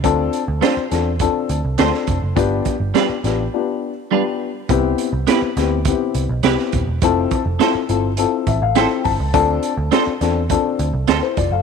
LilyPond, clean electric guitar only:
\new Staff \with { instrumentName = "Clean electric guitar" } { \time 4/4 \key c \major \tempo 4 = 103 r4 <a d' f' c''>8 r4. <a d' f' c''>8 r8 | r4 <g d' f' b'>8 r4. <g d' f' b'>8 r8 | r4 <b e' g' b'>8 r4. <b e' g' b'>8 r8 | r4 <c' e' a' c''>8 r4. <c' e' a' c''>8 r8 |
r4 <c' f' a' c''>8 r4. <c' f' a' c''>8 r8 | }